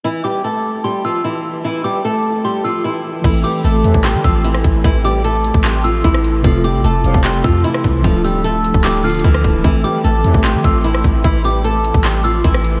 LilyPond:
<<
  \new Staff \with { instrumentName = "Synth bell" } { \time 4/4 \key a \minor \tempo 4 = 150 r8 d'''4. c'''8 e'''8 r4 | r8 d'''4. c'''8 e'''8 r4 | r8 d'''4. c'''8 e'''8 r4 | r8 d'''4. c'''8 e'''8 r4 |
r8 d'''4. c'''8 e'''8 r4 | r8 e'''4. d'''8 f'''8 r4 | r8 d'''4. c'''8 e'''8 r4 | r8 d'''4. c'''8 e'''8 r4 | }
  \new Staff \with { instrumentName = "Nylon-string guitar" } { \time 4/4 \key a \minor <e e'>8 <g g'>8 <a a'>4 <g g'>8 <f f'>8 <e e'>4 | <e e'>8 <g g'>8 <a a'>4 <g g'>8 <f f'>8 <e e'>4 | <e e'>8 <g g'>8 <a a'>4 <g g'>8 <f f'>8 <e e'>4 | <e e'>8 <g g'>8 <a a'>4 <g g'>8 <f f'>8 <e e'>4 |
<f f'>8 <g g'>8 <a a'>4 <g g'>8 <f f'>8 <e e'>4 | <f f'>8 <g g'>8 <a a'>4 <g g'>8 <f f'>8 <e e'>4 | <e e'>8 <g g'>8 <a a'>4 <g g'>8 <f f'>8 <e e'>4 | <e e'>8 <g g'>8 <a a'>4 <g g'>8 <f f'>8 <e e'>4 | }
  \new Staff \with { instrumentName = "Tine electric piano" } { \time 4/4 \key a \minor r1 | r1 | <e a c' a'>1~ | <e a c' a'>1 |
<c a c' a'>1 | <f a d' a'>2~ <f a d' a'>8 <d a d' a'>4. | <e a c' a'>1~ | <e a c' a'>1 | }
  \new Staff \with { instrumentName = "Brass ensemble" } { \clef bass \time 4/4 \key a \minor r1 | r1 | r4. <c, a, e>8. r4. r16 | r1 |
r4. <c, a, f>8. r4. r16 | r1 | r4. <c, a, e>8. r4. r16 | r1 | }
  \new Staff \with { instrumentName = "808-style bass" } { \clef bass \time 4/4 \key a \minor r1 | r1 | a,,8 r8 a,,8 e,16 a,,8 e16 a,,4 a,,8 | a,,4.~ a,,16 a,,4~ a,,16 a,,4 |
f,,8. a,,16 f,,8 f,,16 f,,8. f,8 r8 c,8 | d,,4.~ d,,16 d,,4~ d,,16 d,8 d,,8 | a,,8 r8 a,,8 e,16 a,,8 e16 a,,4 a,,8 | a,,4.~ a,,16 a,,4~ a,,16 a,,4 | }
  \new DrumStaff \with { instrumentName = "Drums" } \drummode { \time 4/4 r4 r4 r4 r4 | r4 r4 r4 r4 | <cymc hh bd>8 hh8 hh8 hh16 bd16 <hc hh>8 <hh bd>8 hh16 ss16 <hh bd>8 | <hh bd>8 hho8 hh8 hh16 bd16 <hc hh>8 hh8 <hh bd>16 ss16 hh8 |
<hh bd>8 hh8 hh8 hh16 bd16 <hc hh>8 <hh bd>8 hh16 ss16 <hh bd>8 | <hh bd>8 hho8 hh8 hh16 bd16 <hc hh>8 hh32 hh32 hh32 hh32 <hh bd>16 ss16 <hh bd>8 | <hh bd>8 hh8 hh8 hh16 bd16 <hc hh>8 <hh bd>8 hh16 ss16 <hh bd>8 | <hh bd>8 hho8 hh8 hh16 bd16 <hc hh>8 hh8 <hh bd>16 ss16 hh8 | }
>>